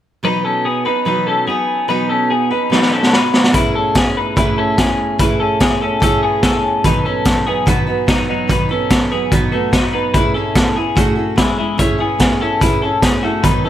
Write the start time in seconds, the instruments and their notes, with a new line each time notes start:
0.23 steel-string acoustic guitar B2 F#3 B3 D#4 B4, clean electric guitar D#4 B4
0.45 clean electric guitar C#4 A4
0.65 clean electric guitar B3 G#4
0.85 steel-string acoustic guitar B3 D#4 B4, clean electric guitar D#4 B4
1.05 steel-string acoustic guitar B2 F#3 B3 D#4 B4, clean electric guitar D#4 B4
1.27 clean electric guitar C#4 A4
1.47 steel-string acoustic guitar F#3 B3 D#4 B4, clean electric guitar B3 G#4
1.88 steel-string acoustic guitar B2 F#3 B3 D#4 B4, clean electric guitar D#4 B4
2.09 clean electric guitar C#4 A4
2.30 clean electric guitar B3 G#4
2.51 steel-string acoustic guitar B3 D#4 B4, clean electric guitar D#4 B4
2.70 steel-string acoustic guitar B2 F#3 B3, clean electric guitar D#4 B4, snare
2.74 steel-string acoustic guitar D#4 B4
2.82 snare
2.93 clean electric guitar C#4 A4
3.03 snare
3.13 clean electric guitar D#4 B4, snare
3.34 snare
3.44 snare
3.53 steel-string acoustic guitar A3 C#4 E4, clean electric guitar E4 B4, kick, closed hi-hat
3.58 steel-string acoustic guitar G#4
3.75 clean electric guitar C#4 A4
3.95 clean electric guitar C#4 G#4, kick, snare, closed hi-hat
4.17 clean electric guitar D#4 B4
4.36 steel-string acoustic guitar A3 C#4 E4 G#4, clean electric guitar E4 B4, kick, closed hi-hat
4.58 clean electric guitar C#4 A4
4.78 steel-string acoustic guitar A3 C#4 E4 G#4, clean electric guitar C#4 G#4, kick, snare, closed hi-hat
5.19 steel-string acoustic guitar A3 C#4 E4, clean electric guitar E4 B4, kick, closed hi-hat
5.23 steel-string acoustic guitar G#4
5.40 clean electric guitar C#4 A4
5.60 clean electric guitar C#4 G#4, kick, snare, closed hi-hat
5.82 clean electric guitar C#4 A4
6.00 steel-string acoustic guitar A3 C#4 E4, clean electric guitar C#4 A4, kick, closed hi-hat
6.05 steel-string acoustic guitar G#4
6.23 clean electric guitar B3 G#4
6.43 clean electric guitar C#4 A4, kick, snare, closed hi-hat
6.84 steel-string acoustic guitar B2 D#3 F#3 B3 D#4 B4, clean electric guitar D#4 B4, kick, closed hi-hat
7.05 steel-string acoustic guitar F#3 B3 D#4 B4, clean electric guitar C#4 A4
7.25 steel-string acoustic guitar F#3 B3 D#4 B4, kick, snare, closed hi-hat
7.46 steel-string acoustic guitar F#3 B3 D#4 B4, clean electric guitar B3 G#4
7.66 steel-string acoustic guitar B2 D#3 F#3 B3 D#4 B4, clean electric guitar B3 F#4, kick, closed hi-hat
7.87 steel-string acoustic guitar F#3 B3 D#4 B4
8.07 steel-string acoustic guitar F#3 B3 D#4 B4, clean electric guitar F#3 D#4, kick, snare, closed hi-hat
8.28 clean electric guitar F#3 D#4, steel-string acoustic guitar F#3 B3 D#4 B4
8.48 steel-string acoustic guitar B2 D#3 F#3 B3 D#4 B4, clean electric guitar D#4 B4, kick, closed hi-hat
8.69 steel-string acoustic guitar F#3 B3 D#4 B4, clean electric guitar C#4 A4
8.90 steel-string acoustic guitar F#3 B3 D#4 B4, kick, snare, closed hi-hat
9.11 steel-string acoustic guitar F#3 B3 D#4 B4, clean electric guitar B3 G#4
9.31 steel-string acoustic guitar B2 D#3 F#3 B3 D#4 B4, clean electric guitar B3 F#4, kick, closed hi-hat
9.52 steel-string acoustic guitar F#3 B3 D#4 B4, clean electric guitar A3 F#4
9.72 steel-string acoustic guitar F#3 B3 D#4 B4, clean electric guitar F#3 D#4, kick, snare, closed hi-hat
9.92 steel-string acoustic guitar F#3 B3 D#4 B4, clean electric guitar D#4 B4
10.14 steel-string acoustic guitar A3 C#4 E4 G#4, clean electric guitar E4 B4, kick, closed hi-hat
10.34 clean electric guitar C#4 A4, steel-string acoustic guitar C#4 E4 G#4
10.55 steel-string acoustic guitar A3 C#4 E4 G#4, kick, snare, closed hi-hat
10.76 clean electric guitar B3 G#4, steel-string acoustic guitar C#4 E4 G#4
10.95 steel-string acoustic guitar A3 C#4 E4 G#4, clean electric guitar A3 F#4, kick, closed hi-hat
11.15 steel-string acoustic guitar C#4 E4 G#4
11.36 clean electric guitar G#3 E4, steel-string acoustic guitar A3 C#4 E4 G#4, kick, snare, closed hi-hat
11.57 clean electric guitar G#3 E4, steel-string acoustic guitar C#4 E4 G#4
11.78 steel-string acoustic guitar A3 C#4 E4 G#4, clean electric guitar E4 C#5, kick, closed hi-hat
11.98 clean electric guitar B3 G#4, steel-string acoustic guitar C#4 E4 G#4
12.19 steel-string acoustic guitar A3 C#4 E4 G#4, kick, snare, closed hi-hat
12.40 clean electric guitar C#4 A4, steel-string acoustic guitar C#4 E4 G#4
12.61 steel-string acoustic guitar A3 C#4 E4 G#4, clean electric guitar E4 B4, kick, closed hi-hat
12.82 clean electric guitar C#4 A4, steel-string acoustic guitar C#4 E4 G#4
13.02 steel-string acoustic guitar A3 C#4 E4 G#4, clean electric guitar C#4 G#4, kick, snare, closed hi-hat
13.22 clean electric guitar A3 F#4, steel-string acoustic guitar C#4 E4 G#4
13.43 steel-string acoustic guitar B2 D#3 F#3 B3 D#4 B4, clean electric guitar D#4 B4, kick, closed hi-hat
13.64 steel-string acoustic guitar B3 D#4 B4, clean electric guitar C#4 A4